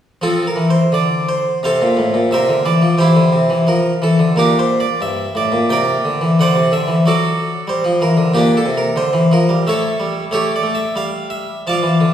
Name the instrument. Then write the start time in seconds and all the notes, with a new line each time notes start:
harpsichord
0.22 F3 C4 F4 A4
0.47 A#4
0.56 E3
0.70 C5
0.92 D3 D5
1.29 C5
1.63 C3 A4 C5 F5
1.81 A#2
1.97 A2
2.14 A#2
2.31 C3 A#4 C5 E5
2.49 D3
2.65 E3 D5
2.81 F3
2.98 E3 E4 G4 C5
3.16 D3
3.32 C3
3.50 E3
3.67 F3 A#4
4.02 E3 A4
4.19 D3
4.36 A#2 D4 G4 A#4
4.59 C5
4.80 D5
5.01 G2 E5
5.35 A2 D5
5.52 A#2
5.70 C3 A#4 D5 G5
6.05 D3
6.21 E3
6.39 D3 C5 D5 F#5
6.55 C3
6.72 D3 E5
6.87 E3
7.06 F#3 F#4 A4 D5
7.67 G3 C5
7.84 F3
8.01 E3 A#4
8.17 D3
8.34 A#2 A#3 D4 G4
8.57 A4
8.66 C3
8.77 A#4
8.96 D3 C5
9.13 E3
9.32 F3 A#4
9.49 G3
9.67 A3 A4 C#5 E5
10.00 G3
10.31 A3 G4 A4 C#5
10.56 D5
10.63 A3
10.75 E5
10.96 G3 F5
11.30 E5
11.67 F3 D5 F5 A5
11.83 E3
12.01 D3